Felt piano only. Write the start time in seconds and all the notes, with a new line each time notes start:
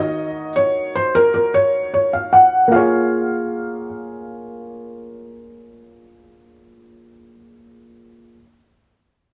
Already playing: D#5
0.56 C#5
0.95 C5
1.15 A#4
1.34 A#4
1.54 C#5
1.94 C#5
2.13 F5
2.33 F#5
2.72 F5